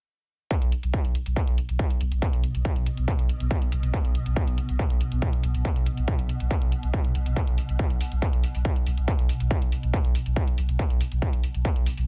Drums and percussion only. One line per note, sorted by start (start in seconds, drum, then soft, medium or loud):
0.51 kick loud
0.51 closed hi-hat medium
0.62 closed hi-hat medium
0.72 closed hi-hat medium
0.83 closed hi-hat medium
0.94 kick loud
0.94 closed hi-hat medium
1.05 closed hi-hat medium
1.15 closed hi-hat medium
1.26 closed hi-hat medium
1.36 kick loud
1.36 closed hi-hat medium
1.48 closed hi-hat medium
1.58 closed hi-hat medium
1.69 closed hi-hat medium
1.79 kick loud
1.79 closed hi-hat medium
1.90 closed hi-hat medium
2.01 closed hi-hat medium
2.12 closed hi-hat medium
2.22 kick loud
2.22 closed hi-hat medium
2.33 closed hi-hat medium
2.44 closed hi-hat medium
2.55 closed hi-hat medium
2.65 kick loud
2.65 closed hi-hat medium
2.76 closed hi-hat medium
2.86 closed hi-hat medium
2.97 closed hi-hat medium
3.08 kick loud
3.08 closed hi-hat medium
3.19 closed hi-hat medium
3.29 closed hi-hat medium
3.40 closed hi-hat medium
3.51 kick loud
3.51 closed hi-hat medium
3.62 closed hi-hat medium
3.72 closed hi-hat medium
3.83 closed hi-hat medium
3.94 kick loud
3.94 closed hi-hat medium
4.05 closed hi-hat soft
4.15 closed hi-hat medium
4.26 closed hi-hat medium
4.36 kick loud
4.36 closed hi-hat medium
4.47 closed hi-hat medium
4.58 closed hi-hat medium
4.69 closed hi-hat soft
4.79 kick loud
4.79 closed hi-hat medium
4.90 closed hi-hat medium
5.01 closed hi-hat medium
5.12 closed hi-hat medium
5.22 kick loud
5.22 closed hi-hat medium
5.33 closed hi-hat medium
5.44 closed hi-hat medium
5.55 closed hi-hat medium
5.65 kick loud
5.65 closed hi-hat medium
5.76 closed hi-hat medium
5.86 closed hi-hat medium
5.97 closed hi-hat soft
6.08 kick loud
6.08 closed hi-hat medium
6.19 closed hi-hat soft
6.29 closed hi-hat medium
6.40 closed hi-hat medium
6.51 kick loud
6.51 closed hi-hat medium
6.62 closed hi-hat soft
6.72 closed hi-hat medium
6.83 closed hi-hat soft
6.94 kick loud
6.94 closed hi-hat medium
7.05 closed hi-hat medium
7.15 closed hi-hat medium
7.26 closed hi-hat medium
7.36 kick loud
7.36 closed hi-hat medium
7.47 closed hi-hat soft
7.58 open hi-hat loud
7.69 closed hi-hat soft
7.79 kick loud
7.79 closed hi-hat medium
7.90 closed hi-hat medium
8.01 open hi-hat loud
8.12 closed hi-hat soft
8.22 kick loud
8.22 closed hi-hat medium
8.33 closed hi-hat soft
8.44 open hi-hat loud
8.55 open hi-hat medium
8.65 kick loud
8.65 closed hi-hat medium
8.76 closed hi-hat soft
8.87 open hi-hat loud
8.98 closed hi-hat soft
9.08 kick loud
9.08 closed hi-hat medium
9.19 closed hi-hat soft
9.29 open hi-hat loud
9.40 closed hi-hat soft
9.51 kick loud
9.51 closed hi-hat medium
9.62 closed hi-hat medium
9.72 open hi-hat loud
9.83 closed hi-hat soft
9.94 kick loud
9.94 closed hi-hat medium
10.05 closed hi-hat soft
10.15 open hi-hat loud
10.26 closed hi-hat medium
10.36 kick loud
10.36 closed hi-hat medium
10.47 closed hi-hat soft
10.58 open hi-hat loud
10.69 closed hi-hat medium
10.79 kick loud
10.79 closed hi-hat medium
10.90 closed hi-hat soft
11.01 open hi-hat loud
11.12 closed hi-hat soft
11.22 kick loud
11.22 closed hi-hat medium
11.33 closed hi-hat medium
11.44 open hi-hat loud
11.54 closed hi-hat soft
11.65 kick loud
11.65 closed hi-hat medium
11.76 closed hi-hat soft
11.86 open hi-hat loud
11.97 open hi-hat medium